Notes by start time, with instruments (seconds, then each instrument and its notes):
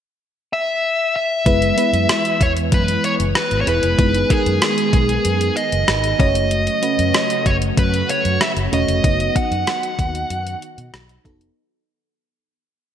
0.53 lead electric guitar E5
1.16 lead electric guitar E5
1.46 fingered electric bass F#1, string machine E3 G#3 B3 G#4, fm electric piano G#3 B3 E4 B4, kick, closed hi-hat
1.62 closed hi-hat
1.77 fm electric piano G#3 B3 E4 B4, closed hi-hat
1.93 fingered electric bass F#2, closed hi-hat
2.09 cross-stick, closed hi-hat
2.25 closed hi-hat
2.41 fingered electric bass E2, lead electric guitar C#5, kick, closed hi-hat
2.57 closed hi-hat
2.72 fingered electric bass F#2, lead electric guitar B4, kick, closed hi-hat
2.88 closed hi-hat
3.04 lead electric guitar C#5, closed hi-hat
3.20 fingered electric bass F#1, closed hi-hat
3.35 lead electric guitar B4, cross-stick, closed hi-hat
3.51 fingered electric bass G#1, closed hi-hat
3.61 lead electric guitar C#5
3.66 fingered electric bass E1, fm electric piano G#3 B3 E4 B4, lead electric guitar B4, closed hi-hat
3.83 fingered electric bass F1, closed hi-hat
3.98 fingered electric bass F#1, string machine D#3 G#3 B3, fm electric piano G#3 B3 D#4 B4, kick, closed hi-hat
4.14 closed hi-hat
4.29 fm electric piano G#3 B3 D#4 A#4, lead electric guitar G#4, kick, closed hi-hat
4.37 fm electric piano B4
4.46 fingered electric bass F#2, closed hi-hat
4.62 cross-stick, closed hi-hat
4.78 closed hi-hat
4.93 fingered electric bass B1, kick, closed hi-hat
5.09 closed hi-hat
5.25 fingered electric bass F#2, closed hi-hat
5.41 closed hi-hat
5.57 lead electric guitar D#5, closed hi-hat
5.72 fingered electric bass F#1, closed hi-hat
5.88 fingered electric bass G#1, cross-stick, closed hi-hat
6.04 closed hi-hat
6.19 fingered electric bass F#1, string machine C#3 F#3 A3 F#4, fm electric piano A3 C#4 F#4 C#5, lead electric guitar D#5, kick, closed hi-hat
6.35 closed hi-hat
6.51 closed hi-hat
6.67 closed hi-hat
6.82 fm electric piano A3 C#4 F#4 B4, closed hi-hat
6.99 fingered electric bass F#2, closed hi-hat
7.14 cross-stick, closed hi-hat
7.30 closed hi-hat
7.46 fingered electric bass F#1, lead electric guitar C#5, kick, closed hi-hat
7.62 closed hi-hat
7.77 fingered electric bass F#2, lead electric guitar B4, kick, closed hi-hat
7.94 closed hi-hat
8.09 lead electric guitar C#5, closed hi-hat
8.25 fingered electric bass F#2, closed hi-hat
8.41 lead electric guitar E5, cross-stick, closed hi-hat
8.56 fingered electric bass F#1, closed hi-hat
8.72 fingered electric bass E1, fm electric piano A3 C#4 F#4 C#5, lead electric guitar D#5, closed hi-hat
8.88 fingered electric bass F1, closed hi-hat
9.03 fingered electric bass F#1, string machine D#3 B3 F#4, fm electric piano B3 D#4 F#4 D#5, kick, closed hi-hat
9.20 closed hi-hat
9.35 fm electric piano B3 D#4 F#4 D#5, lead electric guitar F#5, kick, closed hi-hat
9.51 fingered electric bass F#2, closed hi-hat
9.67 cross-stick, closed hi-hat
9.83 closed hi-hat
9.99 fingered electric bass D#2, kick, closed hi-hat
10.15 closed hi-hat
10.30 fingered electric bass F#2, closed hi-hat
10.47 closed hi-hat
10.62 closed hi-hat
10.78 fingered electric bass B2, closed hi-hat
10.94 fingered electric bass B1, cross-stick, closed hi-hat
11.09 closed hi-hat
11.24 fingered electric bass F1, fm electric piano B3 D#4 F#4 A4, kick, closed hi-hat
11.41 closed hi-hat